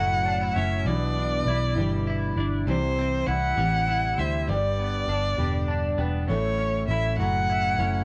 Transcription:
0.00 0.52 F#1 medium
0.00 0.56 A2 medium
0.00 0.86 A2 medium
0.00 0.56 F#3 medium
0.00 0.56 A3 medium
0.00 0.55 C#4 medium
0.00 0.25 E4 medium
0.00 0.55 E4 medium
0.00 0.51 F#5 loud
0.26 0.41 D4 medium
0.41 0.92 E4 medium
0.51 0.86 E4 medium
0.51 0.88 E5 medium
0.51 0.56 F#5 medium
0.56 0.84 F#1 medium
0.56 0.87 A3 soft
0.56 0.86 C#4 medium
0.85 1.42 B1 loud
0.85 1.46 B2 medium
0.85 1.46 E3 medium
0.85 1.46 G3 medium
0.85 1.47 D4 medium
0.85 1.48 E4 medium
0.85 2.37 D5 loud
1.17 2.36 D4 soft
1.46 1.74 B1 medium
1.46 1.76 E3 soft
1.46 1.75 G3 medium
1.46 1.75 D4 medium
1.46 1.74 E4 medium
1.76 2.33 G1 medium
1.76 2.37 B2 medium
1.76 2.41 E3 medium
1.76 2.38 G3 medium
1.76 2.36 D4 medium
1.76 2.36 E4 medium
2.07 2.73 E4 medium
2.36 2.65 G1 medium
2.36 2.67 G3 soft
2.36 2.67 D4 medium
2.36 2.67 E4 medium
2.67 3.24 C2 loud
2.67 3.27 C3 medium
2.67 3.25 E3 medium
2.67 3.27 G3 medium
2.67 3.26 E4 medium
2.67 3.28 G4 medium
2.67 3.28 C5 medium
2.99 4.17 C4 medium
3.26 3.56 C2 medium
3.26 3.57 E3 medium
3.26 3.56 G3 medium
3.26 3.56 E4 medium
3.26 3.55 G4 medium
3.26 4.20 F#5 loud
3.56 4.14 A1 medium
3.56 4.18 C3 medium
3.56 4.18 E3 medium
3.56 4.19 G3 medium
3.56 4.17 E4 medium
3.56 4.17 G4 medium
3.88 4.54 E4 medium
4.18 4.46 D2 medium
4.18 4.47 G3 medium
4.18 4.54 C4 medium
4.18 4.48 E4 medium
4.18 4.48 G4 medium
4.18 4.51 E5 medium
4.48 5.05 G1 medium
4.48 5.08 G2 medium
4.48 5.08 D3 medium
4.48 5.07 G3 medium
4.48 5.07 B3 medium
4.48 5.08 D4 medium
4.48 5.09 G4 medium
4.48 5.99 D5 medium
4.79 5.97 B3 medium
5.07 5.36 G1 medium
5.07 5.38 G3 medium
5.07 5.37 B3 medium
5.07 5.37 D4 medium
5.07 5.36 G4 medium
5.38 5.95 E1 medium
5.38 5.99 G2 medium
5.38 5.99 D3 medium
5.38 5.99 G3 medium
5.38 5.98 B3 medium
5.38 5.97 D4 medium
5.38 5.97 G4 medium
5.68 6.34 D4 medium
5.98 6.27 E1 medium
5.98 6.29 G3 soft
5.98 6.29 B3 medium
5.98 6.29 D4 medium
5.98 6.28 G4 medium
6.29 6.85 A1 loud
6.29 6.89 A2 medium
6.29 6.87 F#3 medium
6.29 6.88 A3 medium
6.29 6.88 C#4 medium
6.29 6.90 E4 medium
6.29 6.85 C#5 loud
6.58 7.79 C#4 soft
6.88 7.17 A1 loud
6.88 7.19 F#3 medium
6.88 7.18 A3 medium
6.88 7.18 C#4 medium
6.88 7.17 E4 medium
6.88 7.16 E5 medium
7.18 7.75 F#1 medium
7.18 7.80 A2 soft
7.18 7.80 F#3 medium
7.18 7.79 A3 medium
7.18 7.78 C#4 medium
7.18 7.78 E4 medium
7.18 8.04 F#5 loud
7.50 8.04 E4 medium
7.78 8.04 F#1 medium
7.78 8.04 A3 soft
7.78 8.04 C#4 medium
7.78 8.04 E4 medium

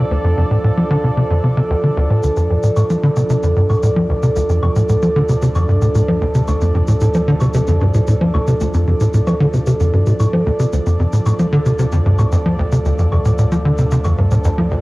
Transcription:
0.00 2.20 D2 medium
0.00 14.81 F3 medium
0.00 14.81 D4 medium
0.00 14.81 A4 medium
0.00 14.81 D5 medium
0.11 0.18 D2 medium
0.24 0.35 F2 medium
0.37 0.45 F2 medium
0.51 0.58 A2 medium
0.64 0.71 A2 medium
0.77 0.84 F3 medium
0.90 0.98 D3 loud
1.04 1.11 C3 medium
1.17 1.24 C3 medium
1.30 1.41 F2 medium
1.44 1.54 C3 medium
1.57 1.61 C3 loud
1.70 1.74 D2 loud
1.84 1.91 D3 medium
1.97 2.08 D2 loud
2.10 2.21 A2 medium
2.23 10.70 D2 medium
2.23 2.31 D2 medium
2.23 cabasa medium
2.37 2.47 F2 medium
2.37 cabasa soft
2.50 2.57 F2 medium
2.63 2.70 A2 medium
2.63 cabasa medium
2.76 2.84 A2 medium
2.76 cabasa medium
2.76 low woodblock soft
2.90 2.97 F3 medium
2.90 cabasa soft
3.03 3.10 D3 loud
3.16 3.24 C3 medium
3.16 cabasa medium
3.30 3.37 C3 medium
3.30 cabasa medium
3.43 3.54 F2 medium
3.43 cabasa soft
3.56 3.67 G2 medium
3.70 3.77 A2 medium
3.70 cabasa soft
3.70 low woodblock soft
3.83 3.90 A2 medium
3.83 cabasa medium
3.96 4.07 F3 medium
4.09 4.14 D2 loud
4.23 4.30 C3 medium
4.23 cabasa soft
4.36 4.43 D2 medium
4.36 cabasa medium
4.49 4.60 F2 medium
4.49 cabasa soft
4.62 4.69 F2 medium
4.62 low woodblock soft
4.76 4.83 A2 medium
4.76 cabasa medium
4.89 4.96 A2 medium
4.89 cabasa medium
5.02 5.09 F3 medium
5.02 cabasa soft
5.16 5.23 D3 loud
5.29 5.36 C3 medium
5.29 cabasa medium
5.42 5.49 C3 medium
5.42 cabasa medium
5.55 5.66 F2 medium
5.55 cabasa soft
5.55 low woodblock soft
5.69 5.79 G2 medium
5.82 5.89 A2 medium
5.82 cabasa medium
5.95 6.02 A2 medium
5.95 cabasa medium
6.08 6.19 F3 medium
6.21 6.26 D2 loud
6.35 6.42 C3 medium
6.35 cabasa medium
6.48 6.55 D2 medium
6.48 cabasa medium
6.48 low woodblock soft
6.61 6.72 F2 medium
6.61 cabasa soft
6.75 6.82 F2 medium
6.88 6.95 A2 medium
6.88 cabasa medium
7.01 7.08 A2 medium
7.01 cabasa medium
7.14 7.22 F3 medium
7.14 cabasa soft
7.28 7.35 D3 loud
7.41 7.48 C3 medium
7.41 cabasa medium
7.41 low woodblock soft
7.54 7.62 C3 medium
7.54 cabasa medium
7.67 7.79 F2 medium
7.67 cabasa soft
7.81 7.92 G2 medium
7.94 8.01 A2 medium
7.94 cabasa medium
8.07 8.15 A2 medium
8.07 cabasa medium
8.21 8.32 F3 medium
8.34 8.38 D2 loud
8.34 low woodblock soft
8.47 8.54 C3 medium
8.47 cabasa medium
8.61 8.68 D2 medium
8.61 cabasa medium
8.74 8.85 F2 medium
8.74 cabasa soft
8.87 8.94 F2 medium
9.00 9.08 A2 medium
9.00 cabasa medium
9.14 9.21 A2 medium
9.14 cabasa medium
9.27 9.34 F3 medium
9.27 cabasa soft
9.27 low woodblock soft
9.40 9.47 D3 loud
9.53 9.61 C3 medium
9.53 cabasa medium
9.67 9.74 C3 medium
9.67 cabasa medium
9.80 9.91 F2 medium
9.80 cabasa soft
9.93 10.04 G2 medium
10.07 10.14 A2 medium
10.07 cabasa medium
10.20 10.27 A2 medium
10.20 cabasa medium
10.20 low woodblock soft
10.33 10.44 F3 medium
10.46 10.51 D2 loud
10.59 10.67 C3 medium
10.59 cabasa medium
10.73 10.80 D2 medium
10.73 14.81 D2 medium
10.73 cabasa medium
10.86 10.97 F2 medium
10.86 cabasa soft
10.99 11.07 F2 medium
11.13 11.20 A2 medium
11.13 cabasa medium
11.26 11.33 A2 medium
11.26 cabasa medium
11.26 low woodblock soft
11.39 11.46 F3 medium
11.39 cabasa soft
11.52 11.60 D3 loud
11.66 11.73 C3 medium
11.66 cabasa medium
11.79 11.86 C3 medium
11.79 cabasa medium
11.92 12.03 F2 medium
11.92 cabasa soft
12.06 12.16 G2 medium
12.19 12.26 A2 medium
12.19 cabasa medium
12.19 low woodblock soft
12.32 12.36 F2 loud
12.32 cabasa medium
12.45 12.56 F3 medium
12.59 12.63 D2 loud
12.72 12.79 C3 medium
12.72 cabasa soft
12.85 12.92 D2 medium
12.85 cabasa medium
12.99 13.09 F2 medium
12.99 cabasa soft
13.12 13.19 F2 medium
13.12 low woodblock soft
13.25 13.32 A2 medium
13.25 cabasa medium
13.38 13.46 A2 medium
13.38 cabasa medium
13.51 13.59 F3 medium
13.51 cabasa soft
13.65 13.72 D3 loud
13.78 13.85 C3 medium
13.78 cabasa soft
13.91 13.99 C3 medium
13.91 cabasa medium
14.04 14.16 F2 medium
14.04 cabasa soft
14.04 low woodblock soft
14.18 14.29 G2 medium
14.31 14.38 A2 medium
14.31 cabasa medium
14.44 14.49 F2 loud
14.44 cabasa medium
14.58 14.69 F3 medium
14.71 14.75 D2 loud

